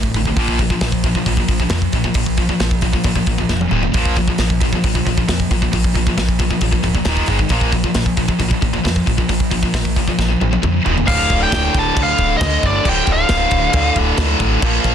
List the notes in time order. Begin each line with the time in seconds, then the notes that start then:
Already playing: D2 A2
0.03 kick
0.14 A1 D2 A2, kick, open hi-hat
0.25 D2 A2, kick
0.37 A#1 A#2 F3 A#3, kick, open hi-hat
0.48 kick
0.59 A#2 F3, kick, open hi-hat
0.70 A#2 F3, kick
0.81 A#1 A#2 F3, kick, snare, open hi-hat
0.92 kick
1.04 A#2 F3, kick, open hi-hat
1.15 A#2 F3, kick
1.26 A#1 A#2 F3, kick, open hi-hat
1.37 A#2 F3, kick
1.48 A#1 A#2 F3, kick, open hi-hat
1.60 A#2 F3, kick
1.69 F2 A#2 F3, kick, snare, open hi-hat
1.82 kick
1.92 A#1 A#2 F3, kick, open hi-hat
2.04 A#2 F3, kick
2.14 A#1 A#2 F3, kick, open hi-hat
2.26 kick
2.37 A#2 F3, kick, open hi-hat
2.49 A#2 F3, kick
2.60 A#1 A#2 F3, kick, snare, open hi-hat
2.71 kick
2.81 A#2 F3, kick, open hi-hat
2.93 A#2 F3, kick
3.04 A#1 A#2 F3, kick, open hi-hat
3.15 A#2 F3, kick
3.26 A#1 A#2 F3, kick, open hi-hat
3.38 A#2 F3, kick
3.49 F1 A#2 F3, kick, snare
3.61 high tom
3.71 D#1 D#2 A#2 D#3, mid tom
3.83 D#2 A#2, floor tom
3.94 A#1 A#2 F3 A#3, kick, open hi-hat
4.05 kick
4.16 A#2 F3, kick, open hi-hat
4.28 A#2 F3, kick
4.38 A#1 A#2 F3, kick, snare, open hi-hat
4.50 kick
4.61 A#2 F3, kick, open hi-hat
4.73 A#2 F3, kick
4.84 A#1 A#2 F3, kick, open hi-hat
4.95 A#2 F3, kick
5.07 A#1 A#2 F3, kick, open hi-hat
5.18 A#2 F3, kick
5.29 F2 A#2 F3, kick, snare, open hi-hat
5.40 kick
5.51 A#1 A#2 F3, kick, open hi-hat
5.62 A#2 F3, kick
5.73 A#1 A#2 F3, kick, open hi-hat
5.84 kick
5.95 A#2 F3, kick, open hi-hat
6.07 A#2 F3, kick
6.18 A#1 A#2 F3, kick, snare, open hi-hat
6.29 kick
6.39 A#2 F3, kick, open hi-hat
6.50 A#2 F3, kick
6.61 A#1 A#2 F3, kick, open hi-hat
6.71 A#2 F3, kick
6.83 D1 A#2 F3, kick, open hi-hat
6.95 A#2 F3, kick
7.05 D#1 D#2 A#2 D#3, kick, snare, open hi-hat
7.17 kick
7.26 G#1 G#2 D#3 G#3, kick, open hi-hat
7.39 G#2 D#3, kick
7.49 A#1 A#2 F3 A#3, kick, open hi-hat
7.61 kick
7.72 A#2 F3, kick, open hi-hat
7.84 A#2 F3, kick
7.94 A#1 A#2 F3, kick, snare, open hi-hat
8.06 kick
8.17 A#2 F3, kick, open hi-hat
8.28 A#2 F3, kick
8.39 A#1 A#2 F3, kick, open hi-hat
8.48 A#2 F3, kick
8.53 A#2 F3
8.61 A#1 A#2 F3, kick, open hi-hat
8.73 A#2 F3, kick
8.84 F2 A#2 F3, kick, snare, open hi-hat
8.96 kick
9.06 A#1 A#2 F3, kick, open hi-hat
9.18 A#2 F3, kick
9.29 A#1 A#2 F3, kick, open hi-hat
9.40 kick
9.51 A#2 F3, kick, open hi-hat
9.63 A#2 F3, kick
9.74 A#1 A#2 F3, kick, snare, open hi-hat
9.85 kick
9.96 A#2 F3, kick, open hi-hat
10.08 A#2 F3, kick
10.19 A#1 A#2 F3, kick, snare
10.29 A#2 F3
10.40 A#1 A#2 F3, high tom
10.51 A#2 F3, high tom
10.62 F2 A#2 F3, kick, mid tom
10.84 D#1 D#2 A#2 D#3, floor tom
10.95 D#2 A#2, floor tom
11.05 D1 D2 A2 D3 F5, kick, crash
11.30 D1, kick, crash
11.43 G5
11.52 D1, kick, snare, crash
11.74 D1, kick, crash
11.79 A5
11.95 D2 A2 D3, kick, crash
12.03 F5
12.18 D1, kick, crash
12.37 D2 D#5, kick, crash
12.42 snare
12.63 G1 D5, kick, crash
12.84 D1 D2 A2 D3, kick, crash
12.89 G5
13.07 D1, kick, crash
13.13 F5
13.29 D1, kick, snare, crash
13.51 D1, kick, crash
13.72 D2 A2 D3, kick, crash
13.96 D1, kick, crash
14.17 D2, kick, snare, crash
14.40 A1, kick, crash
14.61 A#1 A#2 F3 A#3, kick, crash
14.84 A#1, kick, crash